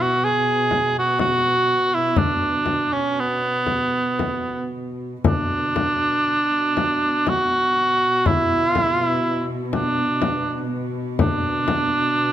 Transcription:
0.00 5.26 B2 soft
0.00 0.26 F#4 medium
0.25 0.96 G#4 loud
0.71 frame drum soft
0.98 1.20 F#4 medium
1.19 1.96 F#4 medium
1.19 frame drum medium
1.94 2.19 E4 medium
2.16 2.94 D4 medium
2.16 frame drum medium
2.66 frame drum soft
2.92 3.21 C#4 medium
3.19 4.75 B3 medium
3.67 frame drum soft
4.19 frame drum soft
5.24 12.32 B2 soft
5.24 7.30 D4 medium
5.24 frame drum medium
5.76 frame drum medium
6.77 frame drum medium
7.27 8.28 F#4 loud
7.27 frame drum medium
8.26 8.70 E4 medium
8.26 frame drum medium
8.70 8.81 F4 medium
8.75 frame drum medium
8.81 8.94 E4 medium
8.94 9.06 F4 medium
9.06 9.47 E4 medium
9.73 10.66 D4 medium
9.73 frame drum soft
10.22 frame drum medium
11.19 12.32 D4 medium
11.19 frame drum medium
11.68 frame drum medium

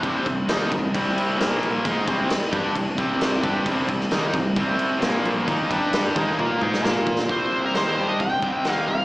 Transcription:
0.03 0.24 C2 medium
0.03 0.25 C3 medium
0.03 0.25 G3 medium
0.03 0.26 C4 medium
0.03 kick loud
0.03 crash medium
0.26 0.47 C2 medium
0.26 0.44 C3 medium
0.26 0.44 G3 medium
0.26 kick medium
0.26 crash medium
0.48 0.70 D#2 loud
0.48 0.71 D#3 medium
0.48 0.71 A#3 loud
0.48 0.71 D#4 medium
0.48 snare loud
0.48 crash medium
0.71 0.92 C2 medium
0.71 0.89 C3 medium
0.71 0.90 G3 medium
0.71 kick medium
0.71 crash medium
0.94 1.36 C2 medium
0.94 1.39 C3 medium
0.94 1.40 G3 medium
0.94 1.40 C4 loud
0.94 kick loud
0.94 crash medium
1.18 crash medium
1.39 1.82 A#1 medium
1.39 1.84 A#2 medium
1.39 1.84 F3 medium
1.39 1.84 A#3 loud
1.39 snare loud
1.39 crash medium
1.63 crash medium
1.85 2.06 G#2 loud
1.85 2.07 G#3 medium
1.85 2.07 D#4 medium
1.85 2.07 G#4 medium
1.85 kick loud
1.85 crash medium
2.07 2.28 C2 medium
2.07 2.30 C3 medium
2.07 2.30 G3 medium
2.07 2.30 C4 medium
2.07 kick loud
2.07 crash medium
2.30 muted fingered electric bass stroke soft
2.30 muted overdriven electric guitar stroke medium
2.30 snare loud
2.30 crash medium
2.52 2.74 G2 medium
2.52 2.74 G3 medium
2.52 2.75 D4 medium
2.52 2.75 G4 loud
2.52 kick loud
2.52 crash medium
2.75 2.96 C2 medium
2.75 2.94 C3 medium
2.75 2.94 G3 medium
2.75 kick medium
2.75 crash medium
2.98 3.40 C2 medium
2.98 3.43 C3 medium
2.98 3.42 G3 medium
2.98 3.43 C4 medium
2.98 kick loud
2.98 crash medium
3.21 snare loud
3.21 crash medium
3.43 3.64 G2 medium
3.43 3.65 G3 medium
3.43 3.65 D4 loud
3.43 3.66 G4 loud
3.43 kick loud
3.43 crash medium
3.66 3.87 C2 medium
3.66 3.87 C3 medium
3.66 3.88 G3 medium
3.66 3.88 C4 loud
3.66 kick loud
3.66 crash medium
3.88 4.10 C2 medium
3.88 4.07 C3 medium
3.88 4.07 G3 medium
3.88 kick medium
3.88 crash medium
4.01 snare soft
4.11 4.32 D#2 medium
4.11 4.33 D#3 medium
4.11 4.33 A#3 medium
4.11 4.34 D#4 loud
4.11 snare loud
4.11 crash medium
4.34 4.55 C2 medium
4.34 4.52 C3 medium
4.34 4.52 G3 medium
4.34 kick medium
4.34 crash medium
4.56 4.99 C2 medium
4.56 5.01 C3 medium
4.56 5.01 G3 medium
4.56 5.02 C4 loud
4.56 kick loud
4.56 crash medium
4.79 crash medium
5.02 5.44 A#1 medium
5.02 5.47 A#2 medium
5.02 5.47 F3 medium
5.02 5.47 A#3 loud
5.02 snare loud
5.02 crash medium
5.25 crash medium
5.48 5.69 D#2 medium
5.48 5.70 D#3 medium
5.48 5.70 A#3 medium
5.48 5.70 D#4 medium
5.48 kick medium
5.48 crash medium
5.71 6.13 G2 medium
5.71 6.15 G3 medium
5.71 6.15 D4 medium
5.71 6.16 G4 loud
5.71 kick loud
5.71 crash medium
5.93 snare loud
5.93 crash medium
6.16 6.37 D#2 medium
6.16 6.38 D#3 medium
6.16 6.38 A#3 loud
6.16 6.38 D#4 loud
6.16 kick loud
6.16 crash medium
6.38 6.59 A#2 medium
6.38 6.60 A#3 medium
6.38 6.61 F4 medium
6.38 6.61 A#4 medium
6.38 high tom medium
6.61 6.82 G#2 loud
6.61 6.84 G#3 medium
6.61 6.85 D#4 medium
6.61 6.85 G#4 medium
6.61 mid tom medium
6.74 snare medium
6.84 7.26 A#2 medium
6.84 7.29 A#3 medium
6.84 7.29 F4 medium
6.84 7.29 A#4 medium
6.84 snare medium
7.07 kick medium
7.19 snare medium
7.29 7.71 C2 medium
7.29 7.74 C3 medium
7.29 7.74 G3 medium
7.29 7.75 C4 medium
7.29 7.65 C5 medium
7.29 kick medium
7.29 open hi-hat soft
7.66 7.75 A#4 medium
7.74 7.95 D#2 medium
7.74 7.96 D#3 medium
7.74 7.97 A#3 medium
7.74 7.97 D#4 loud
7.74 8.06 C5 medium
7.74 snare loud
7.74 open hi-hat soft
7.97 8.18 G2 medium
7.97 8.19 G3 medium
7.97 8.20 D4 medium
7.97 8.20 G4 medium
8.08 8.20 D#5 medium
8.20 8.41 C2 medium
8.20 8.38 C3 medium
8.20 8.39 G3 medium
8.20 8.73 G5 medium
8.20 kick medium
8.20 open hi-hat soft
8.42 8.64 C2 medium
8.42 8.65 C3 medium
8.42 8.65 G3 medium
8.42 8.66 C4 medium
8.42 kick medium
8.65 8.86 D#2 medium
8.65 8.88 D#3 medium
8.65 8.88 A#3 medium
8.65 8.88 D#4 medium
8.65 snare medium
8.65 open hi-hat soft
8.73 8.88 F5 medium
8.88 9.05 C2 medium
8.88 9.05 C3 medium
8.88 9.05 G3 medium
8.88 9.05 F5 medium

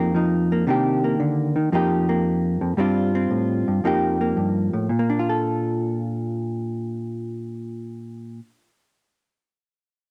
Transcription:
0.00 0.67 F2 medium
0.00 0.13 F3 medium
0.00 0.51 A#3 medium
0.00 0.15 D#4 medium
0.00 0.70 G4 medium
0.15 0.65 F3 medium
0.15 0.65 D#4 medium
0.52 0.65 A#3 medium
0.67 1.19 C3 medium
0.67 1.55 D#3 medium
0.67 1.03 A#3 medium
0.67 1.71 D4 medium
0.67 1.75 G4 medium
1.04 1.71 A#3 medium
1.20 1.56 D3 medium
1.56 1.72 D#3 medium
1.72 2.60 F2 medium
1.72 2.78 F3 medium
1.72 2.08 A#3 medium
1.72 2.77 D#4 medium
1.72 2.77 G4 medium
2.09 2.76 A#3 medium
2.61 2.77 F2 medium
2.77 3.30 G2 medium
2.77 3.82 G3 medium
2.77 3.14 C4 medium
2.77 3.83 D4 medium
2.77 3.85 F4 medium
3.15 3.82 C4 medium
3.31 3.67 A2 medium
3.68 3.84 G2 medium
3.84 4.36 F2 medium
3.84 4.88 F3 medium
3.84 4.20 A#3 medium
3.84 4.89 D#4 medium
3.84 4.90 G4 medium
4.21 4.88 A#3 soft
4.37 4.73 G2 medium
4.73 4.90 A2 medium
4.89 8.39 A#2 medium
4.99 8.49 A#3 medium
5.10 8.60 D4 medium
5.19 8.69 F4 medium
5.29 8.79 A4 soft

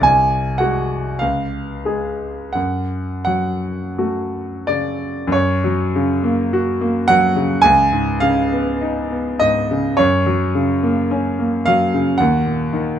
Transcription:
0.01 1.16 C2 medium
0.01 0.60 G#5 medium
0.58 1.17 G#3 soft
0.58 1.17 F#4 soft
0.58 1.19 F#5 medium
1.19 2.51 C#2 medium
1.19 2.54 F5 medium
1.85 2.51 G#3 soft
1.85 2.52 G#4 soft
2.53 5.26 F#2 soft
2.53 3.23 F#5 medium
3.25 4.39 F#3 soft
3.25 4.67 F#5 medium
3.98 4.65 A3 soft
3.98 4.65 F#4 soft
4.67 5.35 C#3 soft
4.67 5.34 D5 medium
5.27 7.57 F#2 medium
5.32 7.07 C#5 medium
5.64 6.12 F#3 medium
5.96 6.42 C#3 medium
6.24 6.69 A#3 medium
6.53 6.98 F#4 medium
6.81 7.25 A#3 medium
7.08 7.53 F#3 medium
7.08 7.64 F#5 loud
7.36 7.64 C#3 medium
7.62 9.94 C#2 medium
7.62 8.21 G#5 loud
7.93 8.40 G#2 soft
8.20 8.69 C#3 medium
8.20 9.40 F5 loud
8.52 9.00 B3 medium
8.81 9.29 D#4 medium
9.11 9.58 B3 soft
9.39 9.87 G#2 medium
9.39 9.97 D#5 medium
9.71 9.99 C#3 medium
9.97 12.16 F#2 medium
9.97 11.66 C#5 medium
10.26 10.71 F#3 medium
10.55 11.00 C#3 medium
10.83 11.28 A#3 medium
11.11 11.56 C#4 medium
11.39 11.83 A#3 medium
11.66 12.10 F#3 medium
11.66 12.19 F5 loud
11.94 12.20 C#3 medium
12.18 12.99 D#2 medium
12.18 12.72 F#5 medium
12.46 12.89 A#2 soft
12.73 12.99 D#3 medium

